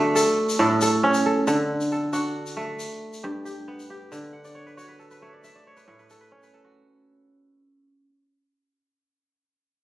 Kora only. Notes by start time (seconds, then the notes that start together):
Already playing: D3 A3 B3 D4 F#4 A4
0.15 A4
0.59 A2 A4
0.82 A4
1.03 C#4
1.26 A4
1.47 D3 A4
1.92 A4
2.13 D4 F#4
2.57 A3
3.23 G2 G4
3.45 G4
3.68 B3
3.90 G4
4.12 D3
4.33 F#5
4.45 D5
4.55 C#5
4.67 B4
4.77 F#4 C#5
4.88 B4
4.99 A4
5.11 B4
5.22 A3 C#5
5.33 D5
5.44 E5
5.56 D5
5.67 C#5
5.77 B4
5.88 A2 C#5
5.99 B4
6.10 A4
6.21 B4
6.32 C#4 C#5
6.43 B4
6.54 A4
6.65 F#4